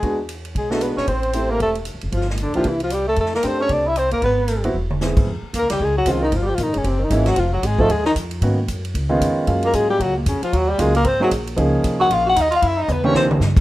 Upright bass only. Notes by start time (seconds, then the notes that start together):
0.03 E2
0.55 B1
0.97 A#1
1.08 A1
1.60 E1
1.94 G1
2.03 F1
2.12 G1
2.57 A#1
2.64 C2
3.17 F2
3.44 F#2
3.69 C2
4.12 G1
4.22 G#1
4.74 E1
5.17 G#2
5.27 F2
5.42 muted upright bass stroke
5.54 D#2
5.62 C#2
5.70 C2
5.80 C#2
6.06 C2
6.32 G1
6.58 A#1
6.67 G1
6.75 F1
6.84 F#1
7.10 G#1
7.36 F1
7.63 G#1
7.88 D#2
8.15 F2
8.41 G#2
8.68 F#2
8.94 C#2
9.21 F2
9.47 F#2
9.74 G#2
10.00 C#2
10.26 F2
10.42 muted upright bass stroke
10.53 D#2
10.79 C#2
11.05 G#1
11.31 A#1
11.58 C#2
11.84 C2
12.10 A#1
12.36 D#2
12.62 F#2
12.88 E2
13.14 C2
13.40 G2